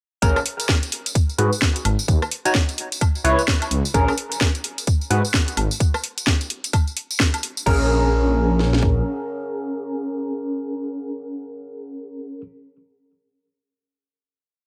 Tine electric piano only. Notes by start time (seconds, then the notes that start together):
0.22 C#4 G#4 A#4
1.38 F#4 G#4 B4
2.45 D#4 F#4 C#5
3.24 E4 B4 C#5
3.94 C#4 G#4 A#4
5.10 F#4 G#4 B4
7.66 C#4 G#4 A#4